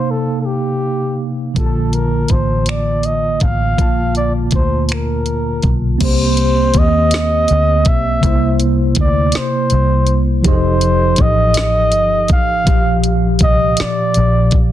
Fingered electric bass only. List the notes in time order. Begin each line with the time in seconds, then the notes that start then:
1.57 A#1
2.30 A1
3.42 A1
3.79 A#1
4.53 D2
5.64 B1
6.01 C2
6.75 D#2
7.50 D2
7.87 B1
8.23 C2
8.97 D2
9.72 C2
10.46 F1
11.19 A1
11.94 G1
12.30 A1
12.67 A#1
13.41 C2
13.80 muted fingered electric bass stroke
14.17 A#1